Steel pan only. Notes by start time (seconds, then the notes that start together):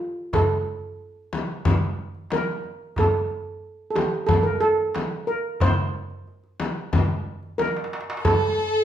Already playing: F4
0.35 A4
2.33 A#4
2.99 A4
3.91 A4
3.96 G4
4.27 A4
4.43 A#4
4.61 A4
5.27 A#4
5.62 C5
7.58 A#4
8.25 A4